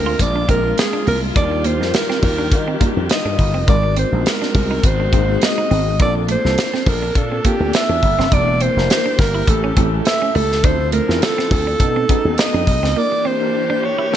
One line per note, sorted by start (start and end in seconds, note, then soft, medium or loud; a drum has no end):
0.00 0.14 D2 medium
0.00 0.48 G#3 medium
0.00 1.34 G#3 medium
0.00 1.34 A#3 medium
0.00 0.49 C4 medium
0.00 0.49 D4 medium
0.00 0.49 F4 medium
0.00 3.64 F4 medium
0.00 0.23 A#4 medium
0.00 0.50 A#4 medium
0.06 0.15 F4 medium
0.19 0.43 A#1 medium
0.19 0.50 D5 medium
0.19 muted clean electric guitar stroke soft
0.19 kick loud
0.19 closed hi-hat medium
0.36 0.44 D4 medium
0.48 0.72 A#1 medium
0.48 1.04 G#3 medium
0.48 0.58 C4 medium
0.48 1.05 C4 medium
0.48 1.05 D4 medium
0.48 1.05 F4 medium
0.48 1.05 A#4 medium
0.48 0.76 A#4 medium
0.48 kick loud
0.48 closed hi-hat medium
0.78 1.06 G#4 medium
0.78 muted clean electric guitar stroke soft
0.78 snare loud
0.78 closed hi-hat medium
0.93 1.02 D4 medium
1.07 1.30 C2 medium
1.07 1.17 A#3 medium
1.07 1.21 A#4 medium
1.07 open hi-hat medium
1.35 1.81 D#2 loud
1.35 3.66 D#3 medium
1.35 1.63 G3 medium
1.35 1.63 D4 medium
1.35 1.63 D#4 medium
1.35 1.46 D#4 medium
1.35 1.64 F4 medium
1.35 3.66 G4 medium
1.35 1.64 A#4 medium
1.35 1.68 D5 medium
1.35 kick loud
1.35 closed hi-hat medium
1.52 muted clean electric guitar stroke soft
1.64 1.74 A#3 medium
1.64 1.97 C5 medium
1.64 closed hi-hat medium
1.80 1.91 F2 medium
1.80 2.44 G3 medium
1.80 2.45 D4 medium
1.80 2.45 D#4 medium
1.80 2.45 F4 medium
1.80 2.45 A#4 medium
1.80 snare soft
1.94 2.24 A#4 medium
1.94 snare medium
1.94 closed hi-hat loud
2.10 2.18 C4 medium
2.10 snare soft
2.23 2.53 D#2 medium
2.23 2.80 A#4 medium
2.23 muted clean electric guitar stroke soft
2.23 kick medium
2.23 open hi-hat medium
2.38 2.47 D4 medium
2.52 2.75 D#3 loud
2.52 muted clean electric guitar stroke soft
2.52 kick loud
2.52 closed hi-hat medium
2.68 2.76 C4 medium
2.80 3.36 G3 medium
2.80 2.90 A#3 medium
2.80 3.37 D4 medium
2.80 3.37 D#4 medium
2.80 3.37 F4 medium
2.80 3.37 A#4 medium
2.80 kick loud
2.80 closed hi-hat medium
2.97 3.07 F2 medium
3.09 3.65 D#5 medium
3.09 snare loud
3.09 closed hi-hat medium
3.25 3.36 G2 medium
3.25 3.34 D4 medium
3.39 3.54 G1 medium
3.39 muted clean electric guitar stroke soft
3.39 kick medium
3.39 open hi-hat medium
3.54 3.65 F1 medium
3.54 3.63 C4 medium
3.67 4.04 G#1 loud
3.67 3.95 G#3 medium
3.67 5.97 G#3 medium
3.67 3.78 G#3 medium
3.67 3.95 C4 medium
3.67 5.97 C4 medium
3.67 3.95 D#4 medium
3.67 5.97 F#4 medium
3.67 3.96 F#4 medium
3.67 3.96 A#4 medium
3.67 3.96 D5 medium
3.67 kick loud
3.67 closed hi-hat medium
3.83 muted clean electric guitar stroke soft
3.96 4.07 C4 medium
3.96 4.29 C5 medium
3.96 closed hi-hat medium
4.12 4.23 A#1 medium
4.12 4.77 G#3 medium
4.12 4.18 B3 medium
4.12 4.77 D#4 medium
4.12 4.77 F#4 medium
4.12 4.77 A#4 medium
4.19 4.80 C4 medium
4.26 4.88 A#4 medium
4.26 snare loud
4.26 closed hi-hat medium
4.42 4.50 D4 medium
4.42 snare soft
4.55 4.78 C2 medium
4.55 muted clean electric guitar stroke soft
4.55 kick medium
4.55 open hi-hat medium
4.71 4.79 D#4 medium
4.83 5.07 G#1 medium
4.83 5.46 C5 medium
4.83 muted clean electric guitar stroke soft
4.83 kick loud
4.83 closed hi-hat medium
5.00 5.08 D4 medium
5.12 5.36 G#1 medium
5.12 5.68 G#3 medium
5.12 5.20 A#3 medium
5.12 5.23 C4 medium
5.12 5.69 D#4 medium
5.12 5.69 F#4 medium
5.12 5.69 G#4 medium
5.12 kick loud
5.12 closed hi-hat medium
5.19 5.72 C4 medium
5.42 6.01 D#5 medium
5.42 muted clean electric guitar stroke soft
5.42 snare medium
5.42 closed hi-hat medium
5.58 5.66 D#4 medium
5.71 6.00 G#1 medium
5.71 5.80 C4 medium
5.71 open hi-hat medium
6.00 6.35 A#1 loud
6.00 8.29 A#3 medium
6.00 6.28 A#3 medium
6.00 6.10 A#3 medium
6.00 6.28 C4 medium
6.00 9.44 D4 medium
6.00 6.28 D4 medium
6.00 6.28 F4 medium
6.00 8.30 A4 medium
6.00 6.29 A4 medium
6.00 6.14 D5 loud
6.00 kick loud
6.00 closed hi-hat medium
6.15 muted clean electric guitar stroke soft
6.28 6.39 A3 medium
6.28 6.90 C5 loud
6.28 closed hi-hat medium
6.44 6.55 C2 medium
6.44 7.09 A#3 medium
6.44 7.09 C4 soft
6.44 7.09 D4 medium
6.44 7.09 F4 medium
6.44 7.09 A4 medium
6.44 snare soft
6.58 snare loud
6.58 closed hi-hat medium
6.74 6.82 C4 medium
6.74 snare soft
6.86 7.10 A#1 medium
6.86 7.19 A#4 medium
6.86 muted clean electric guitar stroke soft
6.86 kick loud
6.86 open hi-hat medium
7.02 7.11 D4 medium
7.15 7.39 A#2 medium
7.15 7.48 A4 medium
7.15 muted clean electric guitar stroke soft
7.15 kick loud
7.15 closed hi-hat medium
7.32 7.40 C4 medium
7.45 7.55 A#3 medium
7.45 8.01 A#3 medium
7.45 8.01 C4 medium
7.45 8.01 D4 medium
7.45 8.01 F4 medium
7.45 7.77 G4 loud
7.45 8.01 A4 medium
7.45 kick loud
7.45 closed hi-hat medium
7.60 7.71 D2 medium
7.73 8.35 E5 loud
7.73 snare loud
7.73 closed hi-hat medium
7.89 8.00 E2 medium
7.89 7.98 D4 medium
8.03 8.15 G1 medium
8.03 muted clean electric guitar stroke soft
8.03 kick medium
8.03 open hi-hat medium
8.19 8.29 F1 medium
8.19 8.27 C4 medium
8.19 snare soft
8.32 8.67 E1 loud
8.32 9.47 E3 medium
8.32 8.60 A#3 medium
8.32 9.47 A#3 medium
8.32 8.42 A#3 medium
8.32 8.60 D4 medium
8.32 8.60 E4 medium
8.32 10.62 G4 medium
8.32 8.60 G4 medium
8.32 8.60 A#4 medium
8.32 8.64 D5 loud
8.32 kick loud
8.32 closed hi-hat medium
8.48 muted clean electric guitar stroke soft
8.61 8.71 C4 medium
8.61 9.22 C5 medium
8.61 closed hi-hat medium
8.76 8.87 F1 medium
8.76 9.41 A#3 medium
8.76 9.41 D4 medium
8.76 9.41 E4 medium
8.76 9.41 G4 medium
8.76 9.41 A#4 medium
8.76 snare soft
8.90 snare loud
8.90 closed hi-hat medium
9.06 9.14 D4 medium
9.19 9.42 G1 medium
9.19 9.51 A#4 loud
9.19 muted clean electric guitar stroke soft
9.19 kick loud
9.19 snare soft
9.19 open hi-hat medium
9.35 9.43 E4 medium
9.47 9.71 A1 medium
9.47 9.71 A3 medium
9.47 10.63 A3 medium
9.47 9.72 C#4 medium
9.47 10.63 C#4 medium
9.47 9.72 E4 medium
9.47 9.72 G4 medium
9.47 9.72 A4 medium
9.47 9.78 A4 medium
9.47 muted clean electric guitar stroke soft
9.47 kick loud
9.47 closed hi-hat medium
9.64 9.72 C#4 medium
9.77 10.00 A1 medium
9.77 10.33 A3 medium
9.77 9.87 C4 medium
9.77 10.33 C#4 medium
9.77 10.33 E4 medium
9.77 10.33 G4 medium
9.77 10.33 A4 medium
9.77 kick loud
9.77 closed hi-hat medium
10.05 10.37 E5 loud
10.05 muted clean electric guitar stroke soft
10.05 snare loud
10.05 closed hi-hat medium
10.22 10.30 C#4 medium
10.35 10.64 C#2 medium
10.35 10.45 A3 medium
10.35 10.66 A4 medium
10.35 open hi-hat medium
10.52 snare soft
10.64 10.99 D2 loud
10.64 11.79 D3 medium
10.64 11.79 F3 medium
10.64 10.92 C4 medium
10.64 11.79 C4 medium
10.64 10.92 D4 medium
10.64 10.74 D4 medium
10.64 10.92 E4 medium
10.64 10.92 F4 medium
10.64 10.92 A4 medium
10.64 10.92 C5 loud
10.64 kick loud
10.64 closed hi-hat medium
10.80 muted clean electric guitar stroke soft
10.92 11.03 A3 medium
10.92 11.24 A#4 medium
10.92 closed hi-hat medium
11.08 11.19 E2 medium
11.08 11.73 C4 medium
11.08 11.73 D4 medium
11.08 11.73 E4 medium
11.08 11.73 F4 medium
11.08 11.73 A4 medium
11.08 snare soft
11.22 11.52 A4 medium
11.22 snare loud
11.22 closed hi-hat loud
11.38 11.46 C4 medium
11.38 snare soft
11.51 11.74 D2 medium
11.51 12.41 A4 loud
11.51 muted clean electric guitar stroke soft
11.51 kick loud
11.51 open hi-hat medium
11.67 11.75 D4 medium
11.80 12.03 B2 medium
11.80 12.95 A3 medium
11.80 12.04 B3 medium
11.80 12.95 B3 medium
11.80 12.04 C#4 medium
11.80 12.95 D#4 medium
11.80 12.04 D#4 medium
11.80 12.04 F#4 medium
11.80 12.04 A4 medium
11.80 muted clean electric guitar stroke soft
11.80 kick loud
11.80 closed hi-hat medium
11.96 12.04 C4 medium
12.09 12.65 B3 medium
12.09 12.19 B3 medium
12.09 12.65 C#4 medium
12.09 12.65 D#4 medium
12.09 12.65 F#4 medium
12.09 12.66 G#4 medium
12.09 kick loud
12.09 closed hi-hat medium
12.25 12.35 D#2 medium
12.38 13.00 D#5 medium
12.38 snare loud
12.38 closed hi-hat medium
12.54 12.65 F2 medium
12.54 12.62 D4 medium
12.67 12.80 B1 medium
12.67 muted clean electric guitar stroke soft
12.67 kick medium
12.67 open hi-hat medium
12.83 12.93 C#2 medium
12.83 12.91 C4 medium
12.83 snare soft
12.96 14.12 E3 medium
12.96 13.24 A#3 medium
12.96 13.06 A#3 medium
12.96 14.12 A#3 medium
12.96 13.24 D4 medium
12.96 14.12 D4 medium
12.96 13.24 E4 medium
12.96 13.24 G4 medium
12.96 14.17 G4 loud
12.96 13.25 A#4 medium
12.96 13.28 D5 loud
13.12 muted clean electric guitar stroke medium
13.25 13.35 C4 medium
13.25 13.86 C5 medium
13.41 14.05 A#3 medium
13.41 14.05 D4 medium
13.41 14.05 E4 medium
13.41 14.06 G4 medium
13.41 14.06 A#4 medium
13.70 13.78 D4 medium
13.83 14.17 C#5 medium
13.83 muted clean electric guitar stroke soft
13.98 14.07 E4 medium
14.12 14.17 A3 medium
14.12 14.17 C#4 medium
14.12 14.17 E4 medium
14.12 14.17 G4 medium
14.12 14.17 A4 medium
14.12 muted clean electric guitar stroke soft
14.12 snare medium